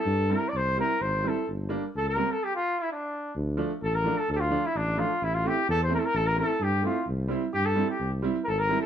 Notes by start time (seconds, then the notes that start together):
Already playing: A4
0.06 G2
0.29 G3 C4 E4 A#4
0.49 D5
0.53 C2 C5
0.77 G3 C4 E4 A#4
1.01 G#1 C5
1.23 G3 C4 E4
1.28 A4
1.48 G1
1.69 G3 A#3 D4
1.95 C#2 A4
2.08 A#4
2.16 G3 A#3 C4
2.32 A4
2.44 G4
2.56 F4
2.79 E4
2.92 D4
3.35 D2
3.57 F3 A3 D4
3.82 A1 A4
3.95 A#4
4.04 F3 A3 D4
4.18 A4
4.29 D2 A4
4.36 G4
4.41 F4
4.50 F3 A3 D4
4.66 E4
4.75 A1 D4
4.97 F3 A3 D4 F4
5.22 A1 E4
5.35 F4
5.44 A3 C4 E4 G4
5.68 E2 A4
5.83 C5
5.89 A3 C4 E4
5.95 A#4
5.99 A4
6.05 A#4
6.14 A1 A4
6.27 A#4
6.36 A3 C4 E4 A4
6.60 G2 G4
6.82 A3 C4 E4 F4
7.08 C2
7.28 G3 C4 E4
7.54 G2 G4
7.66 A4
7.75 G3 C4 E4
7.90 G4
8.00 C2
8.22 G3 C4 E4
8.44 G#1 A4 A#4
8.58 A#4
8.68 G3 C4 E4
8.82 A4